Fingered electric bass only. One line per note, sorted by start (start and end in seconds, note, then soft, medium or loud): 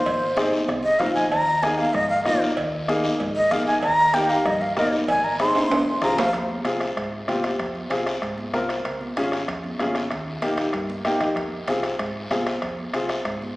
0.05 0.56 G#1 medium
0.69 0.94 C2 medium
1.00 1.25 A#1 medium
1.31 1.82 D#2 medium
1.94 2.19 G#2 medium
2.26 2.51 A#1 medium
2.57 3.07 D#2 medium
3.20 3.45 G#2 medium
3.51 3.76 A#1 loud
3.83 4.33 D#2 medium
4.45 4.70 G2 medium
4.77 5.02 A#1 medium
5.08 5.58 G#1 medium
5.70 5.96 F1 loud
6.02 6.27 C2 medium
6.34 6.59 F2 medium
6.65 6.90 C2 medium
6.97 7.22 G#2 medium
7.28 7.53 C2 medium
7.59 7.85 F2 medium
7.91 8.16 C2 medium
8.22 8.47 G#2 medium
8.54 8.79 C2 medium
8.85 9.10 C#2 medium
9.16 9.42 G#1 medium
9.48 9.73 F2 loud
9.79 10.05 G#1 medium
10.11 10.36 D#2 medium
10.42 10.68 A#1 medium
10.73 10.99 G2 loud
11.05 11.30 A#1 medium
11.36 11.62 F2 medium
11.68 11.93 C2 medium
11.99 12.25 G#2 medium
12.31 12.56 C2 medium
12.62 12.88 F2 medium
12.94 13.19 C2 medium
13.25 13.51 G#2 medium